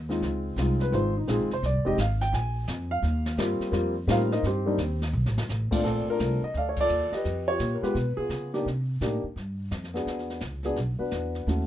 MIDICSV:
0, 0, Header, 1, 5, 480
1, 0, Start_track
1, 0, Tempo, 351700
1, 292, Time_signature, 4, 2, 24, 8
1, 15922, End_track
2, 0, Start_track
2, 0, Title_t, "Grand piano"
2, 0, Program_c, 0, 0
2, 121, Note_on_c, 0, 56, 68
2, 130, Note_on_c, 0, 60, 61
2, 131, Note_on_c, 0, 63, 63
2, 140, Note_on_c, 0, 65, 75
2, 738, Note_off_c, 0, 56, 0
2, 743, Note_off_c, 0, 60, 0
2, 743, Note_off_c, 0, 63, 0
2, 748, Note_off_c, 0, 65, 0
2, 792, Note_on_c, 0, 56, 66
2, 793, Note_on_c, 0, 60, 54
2, 802, Note_on_c, 0, 63, 57
2, 806, Note_on_c, 0, 65, 72
2, 1113, Note_on_c, 0, 71, 86
2, 1238, Note_off_c, 0, 56, 0
2, 1242, Note_off_c, 0, 60, 0
2, 1251, Note_off_c, 0, 63, 0
2, 1252, Note_off_c, 0, 65, 0
2, 1258, Note_on_c, 0, 56, 63
2, 1262, Note_on_c, 0, 60, 60
2, 1264, Note_off_c, 0, 71, 0
2, 1273, Note_on_c, 0, 63, 65
2, 1276, Note_on_c, 0, 65, 71
2, 1294, Note_on_c, 0, 72, 85
2, 1534, Note_off_c, 0, 56, 0
2, 1536, Note_off_c, 0, 60, 0
2, 1542, Note_off_c, 0, 63, 0
2, 1543, Note_off_c, 0, 65, 0
2, 1574, Note_off_c, 0, 72, 0
2, 1599, Note_on_c, 0, 63, 66
2, 1732, Note_off_c, 0, 63, 0
2, 1743, Note_on_c, 0, 60, 68
2, 1747, Note_on_c, 0, 56, 71
2, 1753, Note_on_c, 0, 63, 64
2, 1757, Note_on_c, 0, 65, 77
2, 1782, Note_on_c, 0, 68, 80
2, 2017, Note_off_c, 0, 60, 0
2, 2019, Note_off_c, 0, 56, 0
2, 2022, Note_off_c, 0, 63, 0
2, 2024, Note_off_c, 0, 65, 0
2, 2059, Note_off_c, 0, 68, 0
2, 2095, Note_on_c, 0, 72, 89
2, 2235, Note_off_c, 0, 72, 0
2, 2260, Note_on_c, 0, 74, 74
2, 2522, Note_on_c, 0, 56, 71
2, 2525, Note_on_c, 0, 60, 69
2, 2534, Note_on_c, 0, 63, 67
2, 2538, Note_off_c, 0, 74, 0
2, 2540, Note_on_c, 0, 67, 82
2, 2551, Note_on_c, 0, 75, 91
2, 2676, Note_off_c, 0, 56, 0
2, 2678, Note_off_c, 0, 60, 0
2, 2682, Note_off_c, 0, 63, 0
2, 2685, Note_off_c, 0, 67, 0
2, 2703, Note_off_c, 0, 75, 0
2, 2733, Note_on_c, 0, 77, 87
2, 3014, Note_off_c, 0, 77, 0
2, 3022, Note_on_c, 0, 79, 97
2, 3178, Note_off_c, 0, 79, 0
2, 3195, Note_on_c, 0, 80, 91
2, 3920, Note_off_c, 0, 80, 0
2, 3973, Note_on_c, 0, 77, 108
2, 4574, Note_off_c, 0, 77, 0
2, 4619, Note_on_c, 0, 55, 69
2, 4622, Note_on_c, 0, 58, 57
2, 4624, Note_on_c, 0, 60, 64
2, 4633, Note_on_c, 0, 65, 80
2, 5056, Note_off_c, 0, 55, 0
2, 5063, Note_off_c, 0, 58, 0
2, 5067, Note_off_c, 0, 60, 0
2, 5070, Note_off_c, 0, 65, 0
2, 5077, Note_on_c, 0, 55, 66
2, 5083, Note_on_c, 0, 58, 66
2, 5087, Note_on_c, 0, 60, 69
2, 5091, Note_on_c, 0, 65, 81
2, 5364, Note_off_c, 0, 55, 0
2, 5367, Note_off_c, 0, 58, 0
2, 5369, Note_off_c, 0, 60, 0
2, 5371, Note_off_c, 0, 65, 0
2, 5564, Note_on_c, 0, 55, 69
2, 5566, Note_on_c, 0, 58, 62
2, 5571, Note_on_c, 0, 60, 64
2, 5578, Note_on_c, 0, 63, 75
2, 5599, Note_on_c, 0, 70, 68
2, 5601, Note_on_c, 0, 65, 76
2, 5602, Note_on_c, 0, 77, 94
2, 5605, Note_on_c, 0, 72, 67
2, 5848, Note_off_c, 0, 55, 0
2, 5848, Note_off_c, 0, 58, 0
2, 5851, Note_off_c, 0, 60, 0
2, 5855, Note_off_c, 0, 63, 0
2, 5881, Note_off_c, 0, 70, 0
2, 5881, Note_off_c, 0, 72, 0
2, 5888, Note_off_c, 0, 65, 0
2, 5889, Note_off_c, 0, 77, 0
2, 5901, Note_on_c, 0, 70, 78
2, 5902, Note_on_c, 0, 72, 69
2, 5902, Note_on_c, 0, 75, 92
2, 5907, Note_on_c, 0, 63, 77
2, 6058, Note_off_c, 0, 70, 0
2, 6058, Note_off_c, 0, 72, 0
2, 6058, Note_off_c, 0, 75, 0
2, 6061, Note_off_c, 0, 63, 0
2, 6089, Note_on_c, 0, 60, 63
2, 6092, Note_on_c, 0, 72, 70
2, 6094, Note_on_c, 0, 63, 58
2, 6096, Note_on_c, 0, 67, 68
2, 6359, Note_off_c, 0, 63, 0
2, 6363, Note_on_c, 0, 55, 75
2, 6363, Note_on_c, 0, 58, 69
2, 6369, Note_on_c, 0, 62, 65
2, 6380, Note_on_c, 0, 63, 83
2, 6516, Note_off_c, 0, 55, 0
2, 6517, Note_off_c, 0, 58, 0
2, 6519, Note_off_c, 0, 62, 0
2, 6525, Note_off_c, 0, 63, 0
2, 6807, Note_off_c, 0, 60, 0
2, 6808, Note_off_c, 0, 72, 0
2, 6810, Note_off_c, 0, 67, 0
2, 7792, Note_on_c, 0, 60, 70
2, 7795, Note_on_c, 0, 57, 74
2, 7796, Note_on_c, 0, 46, 72
2, 7800, Note_on_c, 0, 62, 75
2, 7807, Note_on_c, 0, 65, 90
2, 7954, Note_off_c, 0, 57, 0
2, 7961, Note_off_c, 0, 65, 0
2, 7963, Note_off_c, 0, 60, 0
2, 7963, Note_off_c, 0, 62, 0
2, 7973, Note_on_c, 0, 69, 79
2, 7974, Note_on_c, 0, 57, 58
2, 7982, Note_on_c, 0, 65, 60
2, 7983, Note_on_c, 0, 62, 50
2, 7984, Note_on_c, 0, 60, 51
2, 8292, Note_off_c, 0, 69, 0
2, 8300, Note_off_c, 0, 62, 0
2, 8305, Note_off_c, 0, 65, 0
2, 8320, Note_on_c, 0, 62, 59
2, 8324, Note_on_c, 0, 70, 100
2, 8326, Note_on_c, 0, 65, 59
2, 8416, Note_off_c, 0, 46, 0
2, 8437, Note_off_c, 0, 57, 0
2, 8442, Note_off_c, 0, 60, 0
2, 8455, Note_off_c, 0, 65, 0
2, 8456, Note_off_c, 0, 62, 0
2, 8460, Note_on_c, 0, 57, 55
2, 8468, Note_on_c, 0, 60, 49
2, 8476, Note_on_c, 0, 65, 53
2, 8477, Note_on_c, 0, 62, 47
2, 8735, Note_off_c, 0, 57, 0
2, 8739, Note_off_c, 0, 60, 0
2, 8743, Note_off_c, 0, 65, 0
2, 8744, Note_off_c, 0, 62, 0
2, 8751, Note_off_c, 0, 70, 0
2, 8789, Note_on_c, 0, 75, 90
2, 8951, Note_off_c, 0, 75, 0
2, 8970, Note_on_c, 0, 77, 84
2, 8974, Note_on_c, 0, 69, 56
2, 8983, Note_on_c, 0, 74, 61
2, 9126, Note_off_c, 0, 77, 0
2, 9129, Note_on_c, 0, 73, 71
2, 9248, Note_off_c, 0, 73, 0
2, 9268, Note_off_c, 0, 74, 0
2, 9277, Note_off_c, 0, 69, 0
2, 9289, Note_on_c, 0, 74, 111
2, 9297, Note_on_c, 0, 69, 66
2, 9304, Note_on_c, 0, 65, 62
2, 9727, Note_on_c, 0, 75, 90
2, 9750, Note_on_c, 0, 67, 65
2, 9760, Note_off_c, 0, 74, 0
2, 9767, Note_on_c, 0, 71, 66
2, 9877, Note_off_c, 0, 69, 0
2, 9881, Note_off_c, 0, 65, 0
2, 10206, Note_on_c, 0, 73, 94
2, 10212, Note_off_c, 0, 67, 0
2, 10220, Note_off_c, 0, 75, 0
2, 10230, Note_on_c, 0, 65, 61
2, 10232, Note_on_c, 0, 67, 56
2, 10568, Note_on_c, 0, 70, 54
2, 10572, Note_off_c, 0, 73, 0
2, 10651, Note_off_c, 0, 71, 0
2, 10667, Note_off_c, 0, 65, 0
2, 10673, Note_off_c, 0, 67, 0
2, 10679, Note_on_c, 0, 56, 71
2, 10688, Note_off_c, 0, 70, 0
2, 10688, Note_on_c, 0, 65, 65
2, 10691, Note_on_c, 0, 71, 89
2, 10693, Note_on_c, 0, 59, 62
2, 10693, Note_on_c, 0, 67, 74
2, 10835, Note_off_c, 0, 56, 0
2, 10839, Note_off_c, 0, 65, 0
2, 10842, Note_off_c, 0, 59, 0
2, 10842, Note_off_c, 0, 67, 0
2, 11135, Note_off_c, 0, 71, 0
2, 11150, Note_on_c, 0, 68, 88
2, 11180, Note_on_c, 0, 59, 49
2, 11190, Note_on_c, 0, 65, 52
2, 11603, Note_off_c, 0, 68, 0
2, 11652, Note_on_c, 0, 58, 66
2, 11654, Note_on_c, 0, 62, 63
2, 11654, Note_on_c, 0, 63, 63
2, 11655, Note_on_c, 0, 67, 73
2, 11777, Note_off_c, 0, 59, 0
2, 11783, Note_off_c, 0, 65, 0
2, 11801, Note_off_c, 0, 58, 0
2, 11803, Note_off_c, 0, 62, 0
2, 11803, Note_off_c, 0, 63, 0
2, 11803, Note_off_c, 0, 67, 0
2, 12300, Note_on_c, 0, 62, 54
2, 12302, Note_on_c, 0, 58, 62
2, 12306, Note_on_c, 0, 63, 58
2, 12311, Note_on_c, 0, 67, 65
2, 12576, Note_off_c, 0, 62, 0
2, 12577, Note_off_c, 0, 58, 0
2, 12579, Note_off_c, 0, 63, 0
2, 12582, Note_off_c, 0, 67, 0
2, 13565, Note_on_c, 0, 59, 67
2, 13570, Note_on_c, 0, 62, 52
2, 13583, Note_on_c, 0, 66, 61
2, 13585, Note_on_c, 0, 68, 62
2, 14181, Note_off_c, 0, 59, 0
2, 14183, Note_off_c, 0, 62, 0
2, 14190, Note_off_c, 0, 66, 0
2, 14191, Note_off_c, 0, 68, 0
2, 14532, Note_on_c, 0, 59, 75
2, 14539, Note_on_c, 0, 62, 67
2, 14539, Note_on_c, 0, 66, 66
2, 14543, Note_on_c, 0, 68, 86
2, 14681, Note_off_c, 0, 59, 0
2, 14685, Note_off_c, 0, 62, 0
2, 14685, Note_off_c, 0, 66, 0
2, 14687, Note_off_c, 0, 68, 0
2, 14995, Note_on_c, 0, 59, 61
2, 14995, Note_on_c, 0, 62, 52
2, 15000, Note_on_c, 0, 66, 62
2, 15003, Note_on_c, 0, 71, 67
2, 15615, Note_off_c, 0, 62, 0
2, 15616, Note_off_c, 0, 59, 0
2, 15618, Note_off_c, 0, 66, 0
2, 15620, Note_off_c, 0, 71, 0
2, 15661, Note_on_c, 0, 57, 53
2, 15663, Note_on_c, 0, 61, 55
2, 15670, Note_on_c, 0, 64, 49
2, 15677, Note_on_c, 0, 66, 54
2, 15922, Note_off_c, 0, 57, 0
2, 15922, Note_off_c, 0, 61, 0
2, 15922, Note_off_c, 0, 64, 0
2, 15922, Note_off_c, 0, 66, 0
2, 15922, End_track
3, 0, Start_track
3, 0, Title_t, "Upright bass"
3, 0, Program_c, 1, 32
3, 0, Note_on_c, 1, 39, 98
3, 274, Note_off_c, 1, 39, 0
3, 291, Note_on_c, 1, 37, 82
3, 758, Note_off_c, 1, 37, 0
3, 768, Note_on_c, 1, 36, 89
3, 1236, Note_off_c, 1, 36, 0
3, 1259, Note_on_c, 1, 32, 91
3, 1722, Note_off_c, 1, 32, 0
3, 1738, Note_on_c, 1, 34, 84
3, 1899, Note_off_c, 1, 34, 0
3, 1899, Note_on_c, 1, 32, 58
3, 2042, Note_off_c, 1, 32, 0
3, 2051, Note_on_c, 1, 29, 64
3, 2201, Note_off_c, 1, 29, 0
3, 2212, Note_on_c, 1, 36, 81
3, 2370, Note_on_c, 1, 32, 53
3, 2391, Note_off_c, 1, 36, 0
3, 2520, Note_off_c, 1, 32, 0
3, 2528, Note_on_c, 1, 29, 69
3, 2680, Note_off_c, 1, 29, 0
3, 2696, Note_on_c, 1, 32, 91
3, 3161, Note_off_c, 1, 32, 0
3, 3173, Note_on_c, 1, 34, 93
3, 3639, Note_off_c, 1, 34, 0
3, 3652, Note_on_c, 1, 41, 106
3, 4119, Note_off_c, 1, 41, 0
3, 4127, Note_on_c, 1, 39, 93
3, 4596, Note_off_c, 1, 39, 0
3, 4603, Note_on_c, 1, 43, 90
3, 4896, Note_off_c, 1, 43, 0
3, 5075, Note_on_c, 1, 41, 90
3, 5550, Note_off_c, 1, 41, 0
3, 5559, Note_on_c, 1, 45, 90
3, 6032, Note_off_c, 1, 45, 0
3, 6045, Note_on_c, 1, 43, 76
3, 6514, Note_off_c, 1, 43, 0
3, 6524, Note_on_c, 1, 39, 98
3, 6994, Note_off_c, 1, 39, 0
3, 7005, Note_on_c, 1, 35, 104
3, 7183, Note_off_c, 1, 35, 0
3, 7183, Note_on_c, 1, 33, 53
3, 7321, Note_off_c, 1, 33, 0
3, 7329, Note_on_c, 1, 30, 70
3, 7480, Note_off_c, 1, 30, 0
3, 7491, Note_on_c, 1, 33, 90
3, 7780, Note_off_c, 1, 33, 0
3, 7966, Note_on_c, 1, 34, 72
3, 8258, Note_off_c, 1, 34, 0
3, 8450, Note_on_c, 1, 36, 87
3, 8740, Note_off_c, 1, 36, 0
3, 8929, Note_on_c, 1, 38, 80
3, 9397, Note_off_c, 1, 38, 0
3, 9408, Note_on_c, 1, 39, 76
3, 9699, Note_off_c, 1, 39, 0
3, 9893, Note_on_c, 1, 41, 82
3, 10359, Note_off_c, 1, 41, 0
3, 10368, Note_on_c, 1, 46, 86
3, 10659, Note_off_c, 1, 46, 0
3, 10848, Note_on_c, 1, 47, 87
3, 11139, Note_off_c, 1, 47, 0
3, 11320, Note_on_c, 1, 49, 94
3, 11793, Note_off_c, 1, 49, 0
3, 11820, Note_on_c, 1, 48, 75
3, 12283, Note_off_c, 1, 48, 0
3, 12295, Note_on_c, 1, 45, 87
3, 12583, Note_off_c, 1, 45, 0
3, 12772, Note_on_c, 1, 43, 79
3, 13239, Note_off_c, 1, 43, 0
3, 13254, Note_on_c, 1, 41, 94
3, 13720, Note_off_c, 1, 41, 0
3, 13731, Note_on_c, 1, 40, 70
3, 14198, Note_off_c, 1, 40, 0
3, 14213, Note_on_c, 1, 37, 89
3, 14680, Note_off_c, 1, 37, 0
3, 14695, Note_on_c, 1, 35, 82
3, 14983, Note_off_c, 1, 35, 0
3, 15178, Note_on_c, 1, 40, 89
3, 15642, Note_off_c, 1, 40, 0
3, 15649, Note_on_c, 1, 39, 76
3, 15922, Note_off_c, 1, 39, 0
3, 15922, End_track
4, 0, Start_track
4, 0, Title_t, "Muted upright bass strokes"
4, 4909, Note_on_c, 9, 29, 45
4, 5045, Note_off_c, 9, 29, 0
4, 7802, Note_on_c, 9, 29, 43
4, 7938, Note_off_c, 9, 29, 0
4, 8275, Note_on_c, 9, 29, 36
4, 8412, Note_off_c, 9, 29, 0
4, 8765, Note_on_c, 9, 29, 41
4, 8902, Note_off_c, 9, 29, 0
4, 9717, Note_on_c, 9, 29, 36
4, 9853, Note_off_c, 9, 29, 0
4, 10681, Note_on_c, 9, 29, 41
4, 10818, Note_off_c, 9, 29, 0
4, 11161, Note_on_c, 9, 29, 41
4, 11297, Note_off_c, 9, 29, 0
4, 12606, Note_on_c, 9, 29, 39
4, 12742, Note_off_c, 9, 29, 0
4, 15011, Note_on_c, 9, 29, 34
4, 15148, Note_off_c, 9, 29, 0
4, 15922, End_track
5, 0, Start_track
5, 0, Title_t, "Drums"
5, 138, Note_on_c, 9, 38, 33
5, 274, Note_off_c, 9, 38, 0
5, 301, Note_on_c, 9, 25, 56
5, 301, Note_on_c, 9, 38, 46
5, 438, Note_off_c, 9, 38, 0
5, 779, Note_on_c, 9, 44, 62
5, 786, Note_on_c, 9, 38, 64
5, 916, Note_off_c, 9, 44, 0
5, 922, Note_off_c, 9, 38, 0
5, 1089, Note_on_c, 9, 38, 44
5, 1226, Note_off_c, 9, 38, 0
5, 1264, Note_off_c, 9, 25, 0
5, 1264, Note_on_c, 9, 25, 48
5, 1264, Note_on_c, 9, 38, 40
5, 1401, Note_off_c, 9, 38, 0
5, 1745, Note_on_c, 9, 44, 54
5, 1752, Note_on_c, 9, 38, 69
5, 1881, Note_off_c, 9, 44, 0
5, 1888, Note_off_c, 9, 38, 0
5, 2060, Note_on_c, 9, 38, 44
5, 2197, Note_off_c, 9, 38, 0
5, 2220, Note_off_c, 9, 25, 0
5, 2220, Note_on_c, 9, 25, 50
5, 2220, Note_on_c, 9, 38, 47
5, 2357, Note_off_c, 9, 38, 0
5, 2703, Note_on_c, 9, 44, 67
5, 2710, Note_on_c, 9, 38, 66
5, 2839, Note_off_c, 9, 44, 0
5, 2846, Note_off_c, 9, 38, 0
5, 3015, Note_on_c, 9, 38, 44
5, 3151, Note_off_c, 9, 38, 0
5, 3185, Note_off_c, 9, 25, 0
5, 3185, Note_on_c, 9, 25, 55
5, 3185, Note_on_c, 9, 38, 46
5, 3321, Note_off_c, 9, 38, 0
5, 3652, Note_on_c, 9, 44, 66
5, 3659, Note_on_c, 9, 38, 68
5, 3788, Note_off_c, 9, 44, 0
5, 3795, Note_off_c, 9, 38, 0
5, 4138, Note_off_c, 9, 25, 0
5, 4138, Note_on_c, 9, 25, 47
5, 4138, Note_on_c, 9, 38, 50
5, 4274, Note_off_c, 9, 38, 0
5, 4447, Note_on_c, 9, 38, 62
5, 4584, Note_off_c, 9, 38, 0
5, 4611, Note_on_c, 9, 44, 62
5, 4618, Note_on_c, 9, 38, 73
5, 4747, Note_off_c, 9, 44, 0
5, 4754, Note_off_c, 9, 38, 0
5, 4925, Note_on_c, 9, 38, 39
5, 5061, Note_off_c, 9, 38, 0
5, 5086, Note_off_c, 9, 25, 0
5, 5086, Note_on_c, 9, 25, 47
5, 5086, Note_on_c, 9, 38, 49
5, 5223, Note_off_c, 9, 38, 0
5, 5570, Note_on_c, 9, 44, 63
5, 5577, Note_on_c, 9, 38, 71
5, 5706, Note_off_c, 9, 44, 0
5, 5713, Note_off_c, 9, 38, 0
5, 5894, Note_on_c, 9, 38, 47
5, 6030, Note_off_c, 9, 38, 0
5, 6056, Note_off_c, 9, 25, 0
5, 6056, Note_on_c, 9, 25, 53
5, 6056, Note_on_c, 9, 38, 51
5, 6193, Note_off_c, 9, 38, 0
5, 6523, Note_on_c, 9, 44, 56
5, 6529, Note_on_c, 9, 38, 70
5, 6659, Note_off_c, 9, 44, 0
5, 6666, Note_off_c, 9, 38, 0
5, 6846, Note_on_c, 9, 38, 43
5, 6983, Note_off_c, 9, 38, 0
5, 7179, Note_on_c, 9, 38, 69
5, 7316, Note_off_c, 9, 38, 0
5, 7339, Note_on_c, 9, 38, 87
5, 7476, Note_off_c, 9, 38, 0
5, 7496, Note_on_c, 9, 44, 58
5, 7502, Note_on_c, 9, 38, 60
5, 7632, Note_off_c, 9, 44, 0
5, 7639, Note_off_c, 9, 38, 0
5, 7802, Note_on_c, 9, 36, 83
5, 7807, Note_on_c, 9, 49, 81
5, 7938, Note_off_c, 9, 36, 0
5, 7944, Note_off_c, 9, 49, 0
5, 7985, Note_off_c, 9, 25, 0
5, 7985, Note_on_c, 9, 25, 42
5, 7985, Note_on_c, 9, 38, 42
5, 8121, Note_off_c, 9, 38, 0
5, 8455, Note_on_c, 9, 44, 57
5, 8461, Note_on_c, 9, 38, 57
5, 8591, Note_off_c, 9, 44, 0
5, 8598, Note_off_c, 9, 38, 0
5, 8925, Note_off_c, 9, 25, 0
5, 8925, Note_on_c, 9, 25, 39
5, 8925, Note_on_c, 9, 38, 40
5, 9061, Note_off_c, 9, 38, 0
5, 9231, Note_on_c, 9, 51, 77
5, 9241, Note_on_c, 9, 36, 77
5, 9368, Note_off_c, 9, 51, 0
5, 9378, Note_off_c, 9, 36, 0
5, 9402, Note_on_c, 9, 44, 48
5, 9538, Note_off_c, 9, 44, 0
5, 9720, Note_on_c, 9, 38, 36
5, 9856, Note_off_c, 9, 38, 0
5, 9886, Note_off_c, 9, 25, 0
5, 9886, Note_on_c, 9, 25, 46
5, 9886, Note_on_c, 9, 38, 40
5, 10023, Note_off_c, 9, 38, 0
5, 10363, Note_on_c, 9, 44, 57
5, 10369, Note_on_c, 9, 38, 57
5, 10499, Note_off_c, 9, 44, 0
5, 10506, Note_off_c, 9, 38, 0
5, 10688, Note_on_c, 9, 38, 35
5, 10825, Note_off_c, 9, 38, 0
5, 10855, Note_off_c, 9, 25, 0
5, 10855, Note_on_c, 9, 25, 46
5, 10855, Note_on_c, 9, 38, 40
5, 10991, Note_off_c, 9, 38, 0
5, 11328, Note_on_c, 9, 44, 48
5, 11334, Note_on_c, 9, 38, 56
5, 11464, Note_off_c, 9, 44, 0
5, 11471, Note_off_c, 9, 38, 0
5, 11654, Note_on_c, 9, 38, 35
5, 11790, Note_off_c, 9, 38, 0
5, 11836, Note_off_c, 9, 25, 0
5, 11836, Note_on_c, 9, 25, 47
5, 11836, Note_on_c, 9, 38, 41
5, 11973, Note_off_c, 9, 38, 0
5, 12296, Note_on_c, 9, 44, 57
5, 12303, Note_on_c, 9, 38, 57
5, 12432, Note_off_c, 9, 44, 0
5, 12439, Note_off_c, 9, 38, 0
5, 12790, Note_off_c, 9, 25, 0
5, 12790, Note_on_c, 9, 25, 39
5, 12790, Note_on_c, 9, 38, 41
5, 12926, Note_off_c, 9, 38, 0
5, 13251, Note_on_c, 9, 44, 58
5, 13258, Note_on_c, 9, 38, 56
5, 13388, Note_off_c, 9, 44, 0
5, 13395, Note_off_c, 9, 38, 0
5, 13426, Note_on_c, 9, 38, 29
5, 13562, Note_off_c, 9, 38, 0
5, 13584, Note_on_c, 9, 38, 38
5, 13721, Note_off_c, 9, 38, 0
5, 13744, Note_off_c, 9, 25, 0
5, 13744, Note_on_c, 9, 25, 48
5, 13744, Note_on_c, 9, 38, 43
5, 13880, Note_off_c, 9, 38, 0
5, 13905, Note_on_c, 9, 38, 28
5, 14041, Note_off_c, 9, 38, 0
5, 14056, Note_on_c, 9, 38, 42
5, 14193, Note_off_c, 9, 38, 0
5, 14199, Note_on_c, 9, 44, 56
5, 14206, Note_on_c, 9, 38, 59
5, 14335, Note_off_c, 9, 44, 0
5, 14342, Note_off_c, 9, 38, 0
5, 14505, Note_on_c, 9, 38, 32
5, 14642, Note_off_c, 9, 38, 0
5, 14687, Note_off_c, 9, 25, 0
5, 14687, Note_on_c, 9, 25, 43
5, 14687, Note_on_c, 9, 38, 40
5, 14823, Note_off_c, 9, 38, 0
5, 15162, Note_on_c, 9, 44, 56
5, 15169, Note_on_c, 9, 38, 52
5, 15298, Note_off_c, 9, 44, 0
5, 15305, Note_off_c, 9, 38, 0
5, 15487, Note_on_c, 9, 38, 34
5, 15623, Note_off_c, 9, 38, 0
5, 15662, Note_off_c, 9, 25, 0
5, 15662, Note_on_c, 9, 25, 48
5, 15662, Note_on_c, 9, 38, 37
5, 15798, Note_off_c, 9, 38, 0
5, 15922, Note_off_c, 9, 25, 0
5, 15922, End_track
0, 0, End_of_file